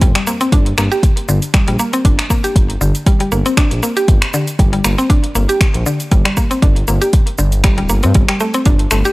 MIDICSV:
0, 0, Header, 1, 4, 480
1, 0, Start_track
1, 0, Key_signature, -2, "minor"
1, 0, Tempo, 508475
1, 16, Time_signature, 4, 2, 24, 8
1, 8614, End_track
2, 0, Start_track
2, 0, Title_t, "Synth arpeggio sound"
2, 0, Program_c, 0, 84
2, 17, Note_on_c, 0, 55, 83
2, 136, Note_off_c, 0, 55, 0
2, 148, Note_on_c, 0, 55, 75
2, 251, Note_off_c, 0, 55, 0
2, 256, Note_on_c, 0, 58, 79
2, 374, Note_off_c, 0, 58, 0
2, 385, Note_on_c, 0, 60, 76
2, 484, Note_off_c, 0, 60, 0
2, 497, Note_on_c, 0, 62, 83
2, 614, Note_off_c, 0, 62, 0
2, 736, Note_on_c, 0, 58, 79
2, 854, Note_off_c, 0, 58, 0
2, 865, Note_on_c, 0, 67, 80
2, 964, Note_off_c, 0, 67, 0
2, 1214, Note_on_c, 0, 50, 83
2, 1332, Note_off_c, 0, 50, 0
2, 1454, Note_on_c, 0, 55, 86
2, 1574, Note_off_c, 0, 55, 0
2, 1586, Note_on_c, 0, 55, 79
2, 1690, Note_off_c, 0, 55, 0
2, 1694, Note_on_c, 0, 58, 80
2, 1812, Note_off_c, 0, 58, 0
2, 1826, Note_on_c, 0, 60, 77
2, 1925, Note_off_c, 0, 60, 0
2, 1934, Note_on_c, 0, 62, 84
2, 2053, Note_off_c, 0, 62, 0
2, 2174, Note_on_c, 0, 58, 82
2, 2293, Note_off_c, 0, 58, 0
2, 2304, Note_on_c, 0, 67, 77
2, 2404, Note_off_c, 0, 67, 0
2, 2653, Note_on_c, 0, 50, 78
2, 2772, Note_off_c, 0, 50, 0
2, 2894, Note_on_c, 0, 55, 84
2, 3014, Note_off_c, 0, 55, 0
2, 3025, Note_on_c, 0, 55, 77
2, 3130, Note_off_c, 0, 55, 0
2, 3133, Note_on_c, 0, 58, 80
2, 3252, Note_off_c, 0, 58, 0
2, 3264, Note_on_c, 0, 60, 77
2, 3364, Note_off_c, 0, 60, 0
2, 3376, Note_on_c, 0, 62, 92
2, 3494, Note_off_c, 0, 62, 0
2, 3614, Note_on_c, 0, 58, 79
2, 3733, Note_off_c, 0, 58, 0
2, 3744, Note_on_c, 0, 67, 73
2, 3844, Note_off_c, 0, 67, 0
2, 4096, Note_on_c, 0, 50, 82
2, 4213, Note_off_c, 0, 50, 0
2, 4334, Note_on_c, 0, 55, 84
2, 4454, Note_off_c, 0, 55, 0
2, 4465, Note_on_c, 0, 55, 82
2, 4570, Note_off_c, 0, 55, 0
2, 4574, Note_on_c, 0, 58, 79
2, 4693, Note_off_c, 0, 58, 0
2, 4705, Note_on_c, 0, 60, 80
2, 4804, Note_off_c, 0, 60, 0
2, 4812, Note_on_c, 0, 62, 79
2, 4931, Note_off_c, 0, 62, 0
2, 5053, Note_on_c, 0, 58, 83
2, 5172, Note_off_c, 0, 58, 0
2, 5184, Note_on_c, 0, 67, 80
2, 5283, Note_off_c, 0, 67, 0
2, 5534, Note_on_c, 0, 50, 78
2, 5653, Note_off_c, 0, 50, 0
2, 5774, Note_on_c, 0, 55, 83
2, 5893, Note_off_c, 0, 55, 0
2, 5904, Note_on_c, 0, 55, 77
2, 6009, Note_off_c, 0, 55, 0
2, 6013, Note_on_c, 0, 58, 78
2, 6132, Note_off_c, 0, 58, 0
2, 6143, Note_on_c, 0, 60, 76
2, 6243, Note_off_c, 0, 60, 0
2, 6252, Note_on_c, 0, 62, 88
2, 6372, Note_off_c, 0, 62, 0
2, 6494, Note_on_c, 0, 58, 75
2, 6613, Note_off_c, 0, 58, 0
2, 6622, Note_on_c, 0, 67, 76
2, 6723, Note_off_c, 0, 67, 0
2, 6972, Note_on_c, 0, 50, 83
2, 7091, Note_off_c, 0, 50, 0
2, 7213, Note_on_c, 0, 55, 92
2, 7333, Note_off_c, 0, 55, 0
2, 7344, Note_on_c, 0, 55, 78
2, 7449, Note_off_c, 0, 55, 0
2, 7453, Note_on_c, 0, 58, 80
2, 7572, Note_off_c, 0, 58, 0
2, 7585, Note_on_c, 0, 60, 74
2, 7684, Note_off_c, 0, 60, 0
2, 7696, Note_on_c, 0, 55, 78
2, 7814, Note_off_c, 0, 55, 0
2, 7825, Note_on_c, 0, 55, 78
2, 7930, Note_off_c, 0, 55, 0
2, 7934, Note_on_c, 0, 57, 83
2, 8053, Note_off_c, 0, 57, 0
2, 8065, Note_on_c, 0, 60, 76
2, 8164, Note_off_c, 0, 60, 0
2, 8175, Note_on_c, 0, 62, 85
2, 8293, Note_off_c, 0, 62, 0
2, 8415, Note_on_c, 0, 57, 78
2, 8533, Note_off_c, 0, 57, 0
2, 8546, Note_on_c, 0, 67, 78
2, 8614, Note_off_c, 0, 67, 0
2, 8614, End_track
3, 0, Start_track
3, 0, Title_t, "Analog synth bass"
3, 0, Program_c, 1, 38
3, 13, Note_on_c, 1, 31, 103
3, 117, Note_off_c, 1, 31, 0
3, 495, Note_on_c, 1, 31, 100
3, 687, Note_off_c, 1, 31, 0
3, 737, Note_on_c, 1, 31, 104
3, 838, Note_off_c, 1, 31, 0
3, 1214, Note_on_c, 1, 31, 94
3, 1317, Note_off_c, 1, 31, 0
3, 1586, Note_on_c, 1, 34, 98
3, 1671, Note_off_c, 1, 34, 0
3, 1933, Note_on_c, 1, 31, 101
3, 2036, Note_off_c, 1, 31, 0
3, 2412, Note_on_c, 1, 31, 98
3, 2606, Note_off_c, 1, 31, 0
3, 2653, Note_on_c, 1, 31, 103
3, 2756, Note_off_c, 1, 31, 0
3, 3134, Note_on_c, 1, 31, 100
3, 3237, Note_off_c, 1, 31, 0
3, 3508, Note_on_c, 1, 34, 94
3, 3593, Note_off_c, 1, 34, 0
3, 3855, Note_on_c, 1, 31, 102
3, 3957, Note_off_c, 1, 31, 0
3, 4334, Note_on_c, 1, 31, 105
3, 4527, Note_off_c, 1, 31, 0
3, 4576, Note_on_c, 1, 31, 106
3, 4678, Note_off_c, 1, 31, 0
3, 5053, Note_on_c, 1, 31, 95
3, 5156, Note_off_c, 1, 31, 0
3, 5425, Note_on_c, 1, 34, 95
3, 5511, Note_off_c, 1, 34, 0
3, 5772, Note_on_c, 1, 31, 101
3, 5876, Note_off_c, 1, 31, 0
3, 6254, Note_on_c, 1, 31, 95
3, 6447, Note_off_c, 1, 31, 0
3, 6496, Note_on_c, 1, 31, 102
3, 6598, Note_off_c, 1, 31, 0
3, 6978, Note_on_c, 1, 31, 97
3, 7350, Note_on_c, 1, 26, 91
3, 7364, Note_off_c, 1, 31, 0
3, 7433, Note_off_c, 1, 26, 0
3, 7458, Note_on_c, 1, 31, 98
3, 7559, Note_off_c, 1, 31, 0
3, 7589, Note_on_c, 1, 43, 110
3, 7673, Note_off_c, 1, 43, 0
3, 7694, Note_on_c, 1, 31, 100
3, 7797, Note_off_c, 1, 31, 0
3, 8174, Note_on_c, 1, 31, 98
3, 8367, Note_off_c, 1, 31, 0
3, 8419, Note_on_c, 1, 31, 104
3, 8520, Note_off_c, 1, 31, 0
3, 8614, End_track
4, 0, Start_track
4, 0, Title_t, "Drums"
4, 14, Note_on_c, 9, 36, 123
4, 14, Note_on_c, 9, 42, 68
4, 14, Note_on_c, 9, 69, 41
4, 108, Note_off_c, 9, 36, 0
4, 108, Note_off_c, 9, 42, 0
4, 108, Note_off_c, 9, 69, 0
4, 144, Note_on_c, 9, 26, 94
4, 144, Note_on_c, 9, 42, 45
4, 238, Note_off_c, 9, 26, 0
4, 238, Note_off_c, 9, 42, 0
4, 254, Note_on_c, 9, 69, 94
4, 349, Note_off_c, 9, 69, 0
4, 385, Note_on_c, 9, 42, 33
4, 385, Note_on_c, 9, 69, 54
4, 479, Note_off_c, 9, 42, 0
4, 479, Note_off_c, 9, 69, 0
4, 494, Note_on_c, 9, 36, 124
4, 494, Note_on_c, 9, 42, 68
4, 494, Note_on_c, 9, 69, 38
4, 588, Note_off_c, 9, 36, 0
4, 589, Note_off_c, 9, 42, 0
4, 589, Note_off_c, 9, 69, 0
4, 625, Note_on_c, 9, 42, 46
4, 719, Note_off_c, 9, 42, 0
4, 734, Note_on_c, 9, 26, 88
4, 734, Note_on_c, 9, 69, 99
4, 828, Note_off_c, 9, 26, 0
4, 828, Note_off_c, 9, 69, 0
4, 867, Note_on_c, 9, 69, 50
4, 962, Note_off_c, 9, 69, 0
4, 973, Note_on_c, 9, 36, 117
4, 974, Note_on_c, 9, 42, 73
4, 974, Note_on_c, 9, 69, 42
4, 1067, Note_off_c, 9, 36, 0
4, 1069, Note_off_c, 9, 42, 0
4, 1069, Note_off_c, 9, 69, 0
4, 1104, Note_on_c, 9, 42, 49
4, 1199, Note_off_c, 9, 42, 0
4, 1214, Note_on_c, 9, 69, 98
4, 1308, Note_off_c, 9, 69, 0
4, 1343, Note_on_c, 9, 42, 33
4, 1343, Note_on_c, 9, 69, 52
4, 1437, Note_off_c, 9, 42, 0
4, 1438, Note_off_c, 9, 69, 0
4, 1452, Note_on_c, 9, 26, 98
4, 1452, Note_on_c, 9, 42, 70
4, 1453, Note_on_c, 9, 36, 124
4, 1453, Note_on_c, 9, 69, 40
4, 1547, Note_off_c, 9, 26, 0
4, 1547, Note_off_c, 9, 42, 0
4, 1547, Note_off_c, 9, 69, 0
4, 1548, Note_off_c, 9, 36, 0
4, 1582, Note_on_c, 9, 42, 47
4, 1676, Note_off_c, 9, 42, 0
4, 1691, Note_on_c, 9, 69, 92
4, 1785, Note_off_c, 9, 69, 0
4, 1824, Note_on_c, 9, 42, 33
4, 1824, Note_on_c, 9, 69, 52
4, 1918, Note_off_c, 9, 42, 0
4, 1919, Note_off_c, 9, 69, 0
4, 1933, Note_on_c, 9, 36, 127
4, 1934, Note_on_c, 9, 42, 66
4, 1934, Note_on_c, 9, 69, 42
4, 2028, Note_off_c, 9, 36, 0
4, 2028, Note_off_c, 9, 42, 0
4, 2028, Note_off_c, 9, 69, 0
4, 2065, Note_on_c, 9, 26, 94
4, 2065, Note_on_c, 9, 42, 45
4, 2160, Note_off_c, 9, 26, 0
4, 2160, Note_off_c, 9, 42, 0
4, 2173, Note_on_c, 9, 36, 65
4, 2174, Note_on_c, 9, 69, 96
4, 2268, Note_off_c, 9, 36, 0
4, 2269, Note_off_c, 9, 69, 0
4, 2304, Note_on_c, 9, 42, 32
4, 2304, Note_on_c, 9, 69, 58
4, 2399, Note_off_c, 9, 42, 0
4, 2399, Note_off_c, 9, 69, 0
4, 2414, Note_on_c, 9, 36, 127
4, 2415, Note_on_c, 9, 42, 71
4, 2415, Note_on_c, 9, 69, 41
4, 2508, Note_off_c, 9, 36, 0
4, 2509, Note_off_c, 9, 42, 0
4, 2510, Note_off_c, 9, 69, 0
4, 2547, Note_on_c, 9, 42, 45
4, 2641, Note_off_c, 9, 42, 0
4, 2656, Note_on_c, 9, 69, 102
4, 2750, Note_off_c, 9, 69, 0
4, 2784, Note_on_c, 9, 42, 30
4, 2784, Note_on_c, 9, 69, 56
4, 2878, Note_off_c, 9, 42, 0
4, 2878, Note_off_c, 9, 69, 0
4, 2893, Note_on_c, 9, 36, 127
4, 2893, Note_on_c, 9, 42, 74
4, 2894, Note_on_c, 9, 69, 43
4, 2988, Note_off_c, 9, 36, 0
4, 2988, Note_off_c, 9, 42, 0
4, 2988, Note_off_c, 9, 69, 0
4, 3022, Note_on_c, 9, 42, 47
4, 3117, Note_off_c, 9, 42, 0
4, 3132, Note_on_c, 9, 69, 96
4, 3226, Note_off_c, 9, 69, 0
4, 3264, Note_on_c, 9, 42, 33
4, 3264, Note_on_c, 9, 69, 54
4, 3359, Note_off_c, 9, 42, 0
4, 3359, Note_off_c, 9, 69, 0
4, 3373, Note_on_c, 9, 26, 101
4, 3373, Note_on_c, 9, 36, 127
4, 3373, Note_on_c, 9, 42, 68
4, 3373, Note_on_c, 9, 69, 41
4, 3467, Note_off_c, 9, 26, 0
4, 3467, Note_off_c, 9, 42, 0
4, 3468, Note_off_c, 9, 36, 0
4, 3468, Note_off_c, 9, 69, 0
4, 3505, Note_on_c, 9, 42, 45
4, 3599, Note_off_c, 9, 42, 0
4, 3614, Note_on_c, 9, 69, 96
4, 3709, Note_off_c, 9, 69, 0
4, 3745, Note_on_c, 9, 42, 30
4, 3745, Note_on_c, 9, 69, 53
4, 3839, Note_off_c, 9, 42, 0
4, 3839, Note_off_c, 9, 69, 0
4, 3854, Note_on_c, 9, 36, 127
4, 3854, Note_on_c, 9, 42, 65
4, 3854, Note_on_c, 9, 69, 40
4, 3948, Note_off_c, 9, 36, 0
4, 3948, Note_off_c, 9, 42, 0
4, 3948, Note_off_c, 9, 69, 0
4, 3983, Note_on_c, 9, 26, 93
4, 3983, Note_on_c, 9, 42, 42
4, 4077, Note_off_c, 9, 26, 0
4, 4077, Note_off_c, 9, 42, 0
4, 4093, Note_on_c, 9, 69, 98
4, 4187, Note_off_c, 9, 69, 0
4, 4224, Note_on_c, 9, 42, 31
4, 4225, Note_on_c, 9, 69, 59
4, 4319, Note_off_c, 9, 42, 0
4, 4319, Note_off_c, 9, 69, 0
4, 4334, Note_on_c, 9, 36, 127
4, 4335, Note_on_c, 9, 42, 66
4, 4335, Note_on_c, 9, 69, 40
4, 4428, Note_off_c, 9, 36, 0
4, 4430, Note_off_c, 9, 42, 0
4, 4430, Note_off_c, 9, 69, 0
4, 4464, Note_on_c, 9, 42, 43
4, 4558, Note_off_c, 9, 42, 0
4, 4573, Note_on_c, 9, 26, 82
4, 4573, Note_on_c, 9, 69, 102
4, 4668, Note_off_c, 9, 26, 0
4, 4668, Note_off_c, 9, 69, 0
4, 4705, Note_on_c, 9, 69, 53
4, 4799, Note_off_c, 9, 69, 0
4, 4813, Note_on_c, 9, 36, 127
4, 4813, Note_on_c, 9, 42, 67
4, 4814, Note_on_c, 9, 69, 44
4, 4908, Note_off_c, 9, 36, 0
4, 4908, Note_off_c, 9, 42, 0
4, 4908, Note_off_c, 9, 69, 0
4, 4943, Note_on_c, 9, 42, 45
4, 5038, Note_off_c, 9, 42, 0
4, 5053, Note_on_c, 9, 69, 102
4, 5147, Note_off_c, 9, 69, 0
4, 5184, Note_on_c, 9, 42, 31
4, 5184, Note_on_c, 9, 69, 54
4, 5278, Note_off_c, 9, 42, 0
4, 5278, Note_off_c, 9, 69, 0
4, 5293, Note_on_c, 9, 26, 98
4, 5293, Note_on_c, 9, 36, 127
4, 5293, Note_on_c, 9, 42, 67
4, 5293, Note_on_c, 9, 69, 42
4, 5387, Note_off_c, 9, 26, 0
4, 5387, Note_off_c, 9, 42, 0
4, 5388, Note_off_c, 9, 36, 0
4, 5388, Note_off_c, 9, 69, 0
4, 5422, Note_on_c, 9, 42, 44
4, 5517, Note_off_c, 9, 42, 0
4, 5533, Note_on_c, 9, 69, 99
4, 5627, Note_off_c, 9, 69, 0
4, 5664, Note_on_c, 9, 42, 30
4, 5664, Note_on_c, 9, 69, 55
4, 5758, Note_off_c, 9, 42, 0
4, 5758, Note_off_c, 9, 69, 0
4, 5773, Note_on_c, 9, 36, 127
4, 5773, Note_on_c, 9, 42, 62
4, 5773, Note_on_c, 9, 69, 40
4, 5867, Note_off_c, 9, 42, 0
4, 5867, Note_off_c, 9, 69, 0
4, 5868, Note_off_c, 9, 36, 0
4, 5903, Note_on_c, 9, 26, 91
4, 5903, Note_on_c, 9, 42, 42
4, 5998, Note_off_c, 9, 26, 0
4, 5998, Note_off_c, 9, 42, 0
4, 6013, Note_on_c, 9, 69, 101
4, 6014, Note_on_c, 9, 36, 65
4, 6107, Note_off_c, 9, 69, 0
4, 6108, Note_off_c, 9, 36, 0
4, 6145, Note_on_c, 9, 42, 32
4, 6146, Note_on_c, 9, 69, 57
4, 6240, Note_off_c, 9, 42, 0
4, 6240, Note_off_c, 9, 69, 0
4, 6253, Note_on_c, 9, 36, 127
4, 6254, Note_on_c, 9, 42, 64
4, 6254, Note_on_c, 9, 69, 41
4, 6348, Note_off_c, 9, 36, 0
4, 6348, Note_off_c, 9, 42, 0
4, 6348, Note_off_c, 9, 69, 0
4, 6385, Note_on_c, 9, 42, 41
4, 6479, Note_off_c, 9, 42, 0
4, 6490, Note_on_c, 9, 69, 103
4, 6585, Note_off_c, 9, 69, 0
4, 6624, Note_on_c, 9, 42, 29
4, 6624, Note_on_c, 9, 69, 57
4, 6718, Note_off_c, 9, 42, 0
4, 6718, Note_off_c, 9, 69, 0
4, 6732, Note_on_c, 9, 42, 67
4, 6732, Note_on_c, 9, 69, 43
4, 6734, Note_on_c, 9, 36, 121
4, 6826, Note_off_c, 9, 42, 0
4, 6826, Note_off_c, 9, 69, 0
4, 6828, Note_off_c, 9, 36, 0
4, 6861, Note_on_c, 9, 42, 44
4, 6955, Note_off_c, 9, 42, 0
4, 6968, Note_on_c, 9, 69, 99
4, 7062, Note_off_c, 9, 69, 0
4, 7100, Note_on_c, 9, 42, 31
4, 7100, Note_on_c, 9, 69, 55
4, 7195, Note_off_c, 9, 42, 0
4, 7195, Note_off_c, 9, 69, 0
4, 7210, Note_on_c, 9, 26, 92
4, 7210, Note_on_c, 9, 42, 66
4, 7210, Note_on_c, 9, 69, 43
4, 7213, Note_on_c, 9, 36, 123
4, 7304, Note_off_c, 9, 26, 0
4, 7304, Note_off_c, 9, 42, 0
4, 7304, Note_off_c, 9, 69, 0
4, 7308, Note_off_c, 9, 36, 0
4, 7342, Note_on_c, 9, 42, 43
4, 7436, Note_off_c, 9, 42, 0
4, 7448, Note_on_c, 9, 69, 92
4, 7543, Note_off_c, 9, 69, 0
4, 7580, Note_on_c, 9, 42, 29
4, 7580, Note_on_c, 9, 69, 54
4, 7674, Note_off_c, 9, 42, 0
4, 7675, Note_off_c, 9, 69, 0
4, 7688, Note_on_c, 9, 42, 64
4, 7689, Note_on_c, 9, 69, 39
4, 7693, Note_on_c, 9, 36, 127
4, 7783, Note_off_c, 9, 42, 0
4, 7783, Note_off_c, 9, 69, 0
4, 7788, Note_off_c, 9, 36, 0
4, 7821, Note_on_c, 9, 26, 88
4, 7821, Note_on_c, 9, 42, 41
4, 7915, Note_off_c, 9, 26, 0
4, 7915, Note_off_c, 9, 42, 0
4, 7930, Note_on_c, 9, 69, 95
4, 8024, Note_off_c, 9, 69, 0
4, 8061, Note_on_c, 9, 42, 31
4, 8061, Note_on_c, 9, 69, 54
4, 8155, Note_off_c, 9, 42, 0
4, 8156, Note_off_c, 9, 69, 0
4, 8171, Note_on_c, 9, 42, 61
4, 8171, Note_on_c, 9, 69, 39
4, 8174, Note_on_c, 9, 36, 119
4, 8265, Note_off_c, 9, 42, 0
4, 8265, Note_off_c, 9, 69, 0
4, 8268, Note_off_c, 9, 36, 0
4, 8301, Note_on_c, 9, 42, 43
4, 8395, Note_off_c, 9, 42, 0
4, 8410, Note_on_c, 9, 26, 78
4, 8410, Note_on_c, 9, 69, 97
4, 8504, Note_off_c, 9, 26, 0
4, 8504, Note_off_c, 9, 69, 0
4, 8543, Note_on_c, 9, 69, 50
4, 8614, Note_off_c, 9, 69, 0
4, 8614, End_track
0, 0, End_of_file